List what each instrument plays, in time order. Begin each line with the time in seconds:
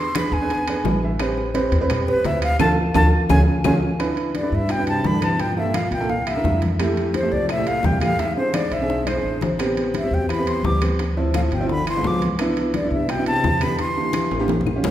Already playing: upright bass E2
0.00 flute C6
0.15 upright piano D4 G#4 B4, flute B5, high bongo, high conga, high timbale, claves
0.32 upright bass E2, flute G#5, high bongo, high conga
0.42 upright piano D4 G#4 B4
0.50 high bongo, high conga, high timbale
0.68 upright piano D4 G#4 B4, high bongo, high conga, high timbale, claves
0.84 upright bass A1, upright piano G#5, high bongo, low bongo, high conga, low timbale
1.03 upright piano E5, high conga
1.19 upright piano C4 G4 B4, high bongo, high timbale, claves
1.37 high bongo, high conga
1.54 upright piano C4 G4 B4, high bongo, high conga, high timbale
1.72 upright bass E2, high bongo, high conga, high timbale
1.81 upright piano C4 G4 B4
1.90 high bongo, high conga, low conga, high timbale, claves
2.08 upright piano C4 G4 B4, flute B4, high bongo, high conga, low conga
2.24 upright bass D2, flute E5, high bongo, low bongo, high conga, high timbale
2.42 flute F5, high timbale, claves
2.59 upright bass D2, upright piano D4 F4 A4, flute A5, low bongo, high conga, high timbale, claves
2.94 upright bass D2, upright piano D4 F4 A4, flute A5, low bongo, high conga, high timbale, claves
3.29 upright bass C#2, upright piano C#4 F4 G#4, flute G#5, low bongo, high conga, high timbale, claves
3.64 upright bass C#2, upright piano C#4 F4 G#4, flute G#5, low bongo, high conga, high timbale, claves
3.99 upright piano D4 E4 B4, high bongo, high conga, high timbale, claves
4.17 high conga, high timbale
4.35 trombone G2, flute D5, high bongo, high conga, high timbale
4.43 upright piano D4 E4 B4
4.52 upright bass G2, trombone G2, flute E5, high conga
4.69 trombone B2, flute G5, high bongo, high conga, high timbale, claves
4.79 upright piano D4 E4 B4
4.87 trombone C3, flute A5, high conga, high timbale
5.04 upright bass G2, trombone D3, flute B5, high bongo, low bongo, high conga, low timbale
5.22 trombone C3, upright piano D4 E4 B4, flute A5, high conga, high timbale, claves
5.39 trombone A#2, flute G5, high bongo, high conga, high timbale
5.57 trombone G2, upright piano A#3 F4 A4, flute E5, high bongo, high conga
5.72 trombone A#2, flute F5, high bongo, high conga, high timbale, claves
5.91 upright bass C2, trombone A#2, flute G5, high bongo, high conga, high timbale
6.00 upright piano A#3 F4 A4
6.07 trombone A#2, flute F5, high bongo, high conga
6.25 trombone G2, flute E5, high bongo, high conga, high timbale, claves
6.36 upright piano D4 E4 A#4
6.44 upright bass F2, high bongo, low bongo, high conga, low timbale
6.62 high conga, high timbale
6.80 upright piano A3 E4 G4, high bongo, high conga, high timbale, claves
6.97 high conga, high timbale
7.14 trombone E2, flute C5, high bongo, high conga, high timbale
7.23 upright piano A3 E4 G4
7.32 upright bass C2, trombone F2, flute D5, high conga
7.49 trombone A2, flute E5, high bongo, high conga, high timbale, claves
7.58 upright piano A3 E4 G4
7.66 trombone A2, flute F5, high conga, high timbale
7.83 upright bass E2, trombone C3, flute G5, high bongo, low bongo, high conga, low timbale
8.00 trombone A2, upright piano A3 E4 G4, flute F5, high conga, high timbale, claves
8.18 trombone G#2, flute E5, high bongo, high conga, high timbale
8.36 trombone E2, upright piano C4 D4 G#4, flute C5, high bongo, high conga
8.53 trombone G#2, flute D5, high bongo, high conga, high timbale, claves
8.70 upright bass B1, trombone G#2, flute E5, high bongo, high conga, high timbale
8.81 upright piano C4 D4 G#4
8.89 high bongo, high conga
9.07 trombone E2, flute C5, high bongo, high conga, high timbale, claves
9.16 upright piano C4 D4 G#4
9.23 upright bass A1, high conga
9.41 low bongo, high conga, high timbale
9.59 upright piano B3 C4 G4, high bongo, high conga, high timbale, claves
9.77 high conga, high timbale
9.94 trombone G2, flute E5, high bongo, high conga, high timbale
10.04 upright piano B3 C4 G4
10.11 upright bass E2, trombone B2, flute G5, high conga
10.28 trombone E3, flute B5, high bongo, high conga, high timbale, claves
10.39 upright piano B3 C4 G4
10.46 trombone E3, flute C6, high conga, high timbale
10.63 upright bass D2, trombone G3, flute D6, high bongo, low bongo, high conga
10.82 upright piano B3 C4 G4, high conga, high timbale, claves
10.99 high bongo, high conga, high timbale
11.17 upright piano F3 C4 E4, high bongo, high conga
11.33 trombone A2, flute F5, high bongo, high conga, high timbale, claves
11.51 upright bass G1, trombone B2, flute G5, high bongo, high conga, high timbale
11.61 upright piano F3 C4 E4
11.68 trombone D3, flute B5, high bongo, high conga
11.86 trombone E3, flute C6, high bongo, high conga, high timbale, claves
11.97 upright piano G#3 B3 F4
12.03 upright bass C2, trombone F3, high bongo, low bongo, high conga
12.07 flute D6
12.22 high conga, high timbale
12.39 upright piano B3 D4 E4, high bongo, high conga, high timbale, claves
12.57 high conga, high timbale
12.74 trombone G2, flute D5, high bongo, high conga, high timbale
12.83 upright piano B3 D4 E4
12.90 upright bass C2, trombone G2, flute E5, high conga
13.09 trombone B2, flute G5, high bongo, high conga, high timbale, claves
13.17 upright piano B3 D4 E4
13.26 trombone C3, flute A5, high conga, high timbale
13.44 upright bass E2, high bongo, low bongo, high conga
13.61 trombone D3, upright piano B3 D4 G4, flute B5, high conga, high timbale, claves
13.79 trombone E3, flute C6, high bongo, high conga, high timbale
13.96 upright piano A#3 D4 G4, high bongo, high conga
14.13 high bongo, high conga, high timbale, claves
14.31 upright bass A1, high bongo, high conga, high timbale
14.39 upright piano A#3 D4 G4
14.48 high bongo, high conga, high timbale
14.61 low conga
14.66 high bongo, claves
14.76 upright piano C#4 F4 G4
14.83 upright bass D2, low bongo, low conga, low timbale